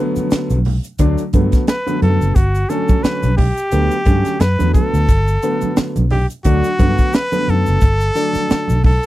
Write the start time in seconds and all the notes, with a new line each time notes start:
Already playing: D3 F#3 A3 B3
0.16 muted fingered electric bass stroke, closed hi-hat, high conga, shaker
0.31 muted fingered electric bass stroke, snare, closed hi-hat, shaker
0.50 B1, closed hi-hat, high conga, shaker
0.65 open hi-hat, low conga
0.84 closed hi-hat, shaker
0.99 D2 D3 F#3 A3 D4, kick, closed hi-hat, shaker
1.18 closed hi-hat, shaker
1.33 G2 D3 F#3 A3 B3, kick, closed hi-hat, muted conga, high conga, shaker
1.52 kick, snare, closed hi-hat, shaker
1.67 B4, snare, closed hi-hat, muted conga, shaker
1.86 D3 F#3 A3 B3, closed hi-hat, high conga, shaker
2.02 F#2 A4, closed hi-hat, muted conga, high conga, low conga
2.21 F#1, closed hi-hat, shaker
2.36 G1 F#4, kick, closed hi-hat, muted conga, shaker
2.55 closed hi-hat, shaker
2.69 D3 F#3 A3 C#4 A4, closed hi-hat, muted conga, shaker
2.88 muted fingered electric bass stroke, kick, closed hi-hat, high conga, shaker
3.03 B4, muted fingered electric bass stroke, snare, closed hi-hat, muted conga, shaker
3.23 B1, closed hi-hat, high conga, shaker
3.37 G4, kick, open hi-hat, muted conga, low conga
3.57 closed hi-hat, shaker
3.72 D2 D3 F#3 A3 B3, closed hi-hat, muted conga, shaker
3.91 closed hi-hat, shaker
4.05 G2 D3 F#3 A3 C#4, kick, closed hi-hat, high conga, shaker
4.25 snare, closed hi-hat, shaker
4.40 F#2 B4, snare, closed hi-hat, muted conga, shaker
4.59 E2 D3 F#3 A3 B3, closed hi-hat, high conga, shaker
4.74 A4, kick, closed hi-hat, muted conga, high conga, low conga, shaker
4.94 D2, closed hi-hat, shaker
5.09 G1, kick, closed hi-hat, muted conga, shaker
5.28 closed hi-hat, shaker
5.43 D3 F#3 A3 B3, closed hi-hat, shaker
5.61 muted fingered electric bass stroke, closed hi-hat, high conga, shaker
5.77 muted fingered electric bass stroke, snare, closed hi-hat, muted conga, shaker
5.96 B1, closed hi-hat, high conga, shaker
6.10 G4, open hi-hat, muted conga, low conga
6.30 closed hi-hat, shaker
6.44 D2 D3 F#3 A3 D4 F#4, kick, closed hi-hat, muted conga, shaker
6.64 closed hi-hat, shaker
6.79 G2 D3 F#3 A3 B3, kick, closed hi-hat, high conga, shaker
6.98 kick, closed hi-hat, shaker
7.13 B4, snare, closed hi-hat, muted conga, shaker
7.32 D3 F#3 A3 B3, closed hi-hat, high conga, shaker
7.48 F#2 A4, closed hi-hat, high conga, low conga
7.66 F#1, closed hi-hat, shaker
7.81 G1, kick, closed hi-hat, shaker
8.00 closed hi-hat, shaker
8.15 D3 F#3 A3 D4, closed hi-hat, muted conga, shaker
8.33 muted fingered electric bass stroke, closed hi-hat, high conga, shaker
8.49 muted fingered electric bass stroke, snare, closed hi-hat, muted conga, shaker
8.68 B1, closed hi-hat, high conga, shaker
8.84 A4, kick, open hi-hat, muted conga, low conga